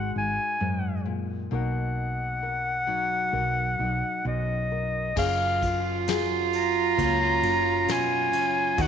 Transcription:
Already playing: fretless electric bass G#1, nylon-string guitar G#2 G#3 D#4 F#4, clarinet F#5
0.15 fretless electric bass G#1, nylon-string guitar D#4, clarinet G#5
0.60 fretless electric bass F#2, nylon-string guitar G#2
1.05 nylon-string guitar A#2
1.51 fretless electric bass B1, nylon-string guitar B2 A#3 D#4 A#4, clarinet F#5
2.43 nylon-string guitar A#4
2.87 nylon-string guitar F#3 D#4
3.33 fretless electric bass B1, nylon-string guitar A#4
3.79 fretless electric bass B1, nylon-string guitar D#4
4.25 fretless electric bass B1, nylon-string guitar F#2, clarinet D#5
4.72 nylon-string guitar A#4
5.16 fretless electric bass F#1, nylon-string guitar F#2 G#4, cello F4, clarinet F5, kick, crash
5.62 nylon-string guitar F4, kick, ride
6.07 nylon-string guitar F#3 G#4, snare, ride
6.53 clarinet A#5, ride
6.97 fretless electric bass C#2, nylon-string guitar C#3 A#3, kick, ride
7.43 fretless electric bass F#1, nylon-string guitar F4, ride
7.88 nylon-string guitar B2, clarinet G#5, snare, ride
8.33 nylon-string guitar C#3, ride
8.78 fretless electric bass D#2, nylon-string guitar D#3 F#4, cello D#4, clarinet F#5, kick, ride

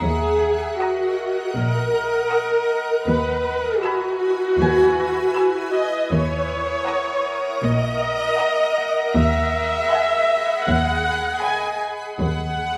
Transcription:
Already playing: harp A#5
0.03 double bass section D#2, cello section D#2, viola section G#4, ambient pad A#4 D#5 F#5
0.80 viola section F#4, violin section F#5 A#5 D#6
1.56 double bass section A#1, cello section A#2, viola section A#4
2.31 violin section F#5 A#5 D#6
3.08 cello section D#2, double bass section D#2, ambient pad E4 B4 G#5, viola section B4
3.83 viola section F#4, violin section G#5 B5 E6, harp B5
4.60 double bass section D#2, cello section D#2, harp G#4 G#5
4.99 harp A#6
5.36 violin section G#5 B5 E6
5.73 viola section D#5
6.11 cello section D#2, double bass section D#2, ambient pad A#4 F#5 A#5, viola section C#5, violin section D#6
6.87 violin section E5 F#5 A#5 D#6
7.63 double bass section A#1, cello section A#2, viola section D#5, violin section A#6
8.39 violin section F#5 A#5 D#6
8.78 harp F#5
9.15 cello section D#2, double bass section D#2, ambient pad G#4 B5, viola section E5
9.91 violin section F#5 G#5 B5
10.67 double bass section D#2, cello section D#2, viola section F#5
11.42 harp D#5, violin section F#5 G#5 B5, viola section G#5
12.19 cello section D#2, double bass section D#2, ambient pad F#4 F#5 A#5, viola section F#5

